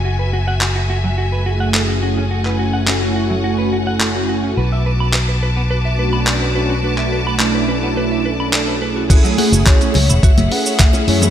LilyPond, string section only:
\new Staff \with { instrumentName = "String section" } { \time 4/4 \key fis \minor \tempo 4 = 106 << { <a fis' gis''>1~ | <a fis' gis''>1 | <fis' b' a''>1~ | <fis' b' a''>1 |
<a gis' fis''>1 | } \\ { e''2.~ e''8 fis''8~ | fis''1 | d'''1~ | d'''1 |
e''1 | } >> }